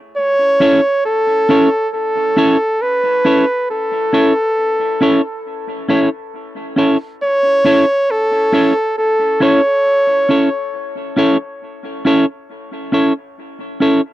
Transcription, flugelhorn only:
0.17 C#5
1.06 A4
1.94 A4
2.82 B4
3.71 A4
7.23 C#5
8.11 A4
8.98 A4
9.42 C#5

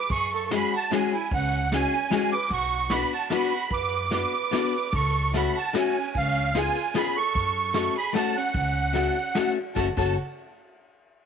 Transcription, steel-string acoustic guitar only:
0.50 G#3 C#4 F#4 G#4
0.91 G#3 C#4 F#4 G#4
1.73 G#3 C#4 F#4 G#4
2.10 G#3 C#4 F#4 G#4
2.90 B3 D4 F#4 B4
3.31 B3 D4 F#4 B4
4.11 B3 D4 F#4 B4
4.51 B3 D4 F#4 B4
5.33 A3 C#4 F#4 A4
5.73 A3 C#4 F#4 A4
6.54 B3 C#4 F4 G#4
6.94 B3 C#4 F4 G#4
7.73 A3 C#4 F#4 A4
8.13 A3 C#4 F#4 A4
8.93 A3 C#4 F#4 A4
9.35 A3 C#4 F#4 A4
9.75 A3 C#4 F#4 A4
9.97 A3 C#4 F#4 A4

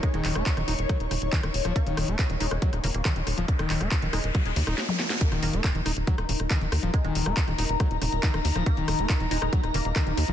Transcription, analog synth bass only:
0.14 D#1
0.25 D#1
0.35 D#1
0.57 D#1
0.68 D#1
0.79 D#1
1.00 D#1
1.11 D#1
1.22 D#1
1.43 D#1
1.54 D#1
1.65 D#1
1.87 D#1
1.97 D#1
2.08 D#1
2.30 D#1
2.41 D#1
2.51 D#1
2.73 D#1
2.84 D#1
2.94 D#1
3.16 D#1
3.27 D#1
3.38 D#1
3.59 D#1
3.70 D#1
3.81 D#1
4.02 D#1
4.13 D#1
4.24 D#1
4.46 D#1
4.56 D#2
4.67 D#1
5.32 D#1
5.43 D#1
5.53 D#1
5.75 D#1
5.86 D#1
5.97 D#1
6.18 D#1
6.29 D#1
6.40 D#1
6.61 D#1
6.72 D#2
6.83 D#1
7.05 D#1
7.15 D#1
7.26 D#1
7.48 D#1
7.58 D#1
7.69 D#1
7.91 D#1
8.02 D#1
8.12 D#1
8.34 D#1
8.45 D#2
8.56 D#1
8.77 D#1
8.88 D#1
8.99 D#1
9.20 D#1
9.31 D#1
9.42 D#1
9.64 D#1
9.74 D#1
9.85 D#1
10.07 D#1
10.17 D#2
10.28 D#1

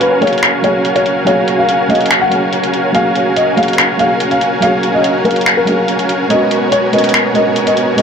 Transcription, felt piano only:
Already playing: F#3 A#3 G#4 F5
0.21 F#3 A#3 G#4 F5
0.62 F#3 A#3 F5
0.66 G#4
1.25 F#3 A#3 F5
1.29 G#4
1.88 F#3 A#3 G#4 F5
2.29 F#3 A#3 C#5
2.33 G#4
2.92 F#3 A#3 F5
2.96 G#4
3.56 F#3 A#3 G#4 F5
3.97 F#3 A#3 F5
4.01 G#4
4.60 F#3 A#3 F5
4.64 G#4
5.24 F#3 A#3 G#4 F5
5.65 F#3 A#3 F5
5.69 G#4
6.28 G#3 B3 C#4 F#4
6.32 A#4
6.92 G#3 B3 C#4 F#4 A#4
7.33 G#3 B3 C#4 F#4
7.37 A#4
7.96 G#3 B3 C#4 F#4

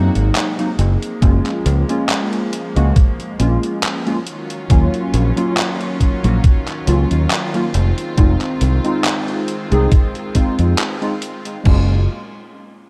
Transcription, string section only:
Already playing: C3 G#3 A#3 F#4
0.79 F3 A#3
4.26 D#3 F#3 C#4 F4
7.74 G#3 C4
11.66 A#2 F#3 G#3 F4

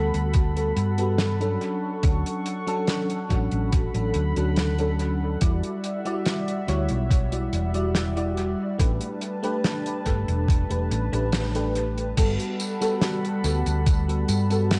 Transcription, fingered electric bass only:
Already playing: D2
0.14 D2
0.77 G2
2.04 D2
3.30 A1
3.52 A1
3.94 A1
4.15 D2
4.37 D2
5.42 E2
6.68 D2
6.90 B1
7.53 E1
8.80 A1
10.06 G1
10.28 E1
10.70 E1
10.91 A1
11.13 A1
12.18 G1
13.44 D2
13.66 D2
14.29 G2

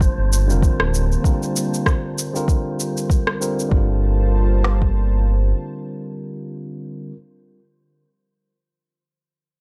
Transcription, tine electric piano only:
0.47 D3 G3 C4 F4
0.51 A#4
1.22 D3 G3 C4 F4 A#4
2.33 D3 G3 C4 F4 A#4
3.40 D3 G3 C4 F4 A#4
3.69 D3 G3 C4
3.73 F4 A#4

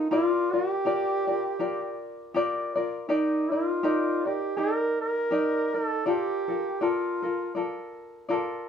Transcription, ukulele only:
Already playing: A#4
0.11 F4 G4 A#4 D5
0.53 F4 A#4 D5
0.85 F4 G4 A#4 D5
1.27 F4 A#4 D5
1.59 F4 G4 A#4 D5
2.34 F4 G4 A#4 D5
2.76 F4 A#4 D5
3.09 D#4 G4 A#4 D5
3.52 D#4 A#4 D5
3.83 D#4 G4 A#4 D5
4.25 D#4 A#4 D5
4.57 D#4 G4 A#4 D5
5.31 D#4 G4 A#4 D5
5.74 D#4 D5
6.06 F4 A4 A#4 D5
6.48 F4 A4 A#4
6.81 F4 A4 A#4 D5
7.22 F4 A4 A#4
7.55 F4 A4 A#4 D5
8.29 F4 A4 A#4 D5

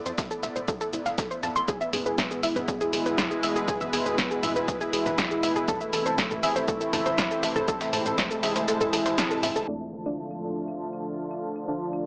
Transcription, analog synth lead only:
1.68 G#4
1.81 B3
1.93 B3
2.06 G#4
2.18 B3
2.31 B3
2.43 E4
2.56 B3
2.68 B3
2.81 E4
3.68 G#4
3.81 B3
3.93 B3
4.06 G#4
4.18 B3
4.31 B3
4.43 E4
4.56 B3
4.68 B3
4.81 E4
5.68 A4
5.81 A3
5.93 A3
6.06 A4
6.18 A3
6.31 A3
6.43 G#4
6.56 A3
6.68 A3
6.81 E4
7.68 A4
7.81 A3
7.93 A3
8.06 A4
8.18 A3
8.31 A3
8.43 G#4
8.56 A3
8.68 A3
8.81 E4

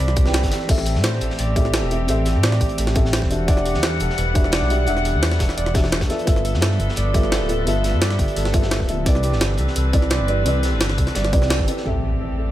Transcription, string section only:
Already playing: E3 C4 D4 B5
0.69 A3 G4
3.30 G3 D4 F#5
6.09 F3 B3 A4 E5
9.06 E3 C4 D4 B4
11.86 E3 A3 C4 G4

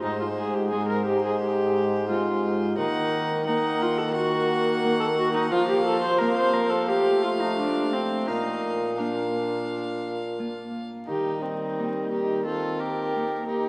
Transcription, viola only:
0.02 D#4
0.20 F4
0.37 G#4
0.54 G4
0.71 G#4
0.88 A#4
1.06 G4
1.24 G#4
1.40 G4
2.09 F4
2.78 D#4
3.47 D#4
3.82 F4
3.98 A4
4.15 F#4
5.00 A4
5.17 F#4
5.34 D#4
5.51 F4
5.69 G4
5.85 A4
6.02 C5
6.18 A#4
6.37 C5
6.53 A#4
6.70 A4
6.88 G4
7.23 F4
7.40 D#4
7.58 D4
7.93 C4
8.28 D#4
8.98 D4
11.08 G4
11.42 D#4
12.12 G4
12.45 A4
12.79 A#4
13.49 G4

